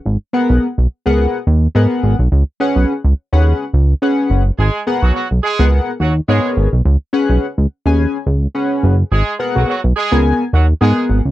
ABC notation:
X:1
M:4/4
L:1/16
Q:"Swing 16ths" 1/4=106
K:G#m
V:1 name="Analog polysynth"
z2 [B,GAf]2 z3 [B,GAf]2 z3 [B,GAf]3 z | z2 [CGBf]2 z3 [CGBf]2 z3 [CGBf]3 z | z2 [B,GAf]2 z3 [B,GAf]2 z3 [B,GAc]3 z | z2 [CGBf]2 z3 [CGBg]2 z3 [CGBf]3 z |
z2 [B,GAf]2 z3 [B,GAg]2 z3 [B,GAf]3 z |]
V:2 name="Horn section"
z16 | z16 | [G,G]2 z [F,F] [F,F] z [G,G]2 z2 [F,F] z [G,G]2 z2 | z16 |
[G,G]2 z [F,F] [F,F] z [G,G]2 z2 [F,F] z [G,G]2 z2 |]
V:3 name="Analog synth bass" clef=bass
G,,, z2 B,,, z B,,, z C,,2 z D,,2 G,, z G,,, B,,, | C,, z2 B,,, z C,, z D,,2 z C,,2 z2 F,,,2 | G,,, z2 B,,, z B,,, z C,,2 z D,,2 G,, z G,,, B,,, | C,, z2 B,,, z C,, z D,,2 z C,,2 z2 F,,,2 |
G,,, z2 B,,, z B,,, z C,,2 z D,,2 G,, z G,,, C,, |]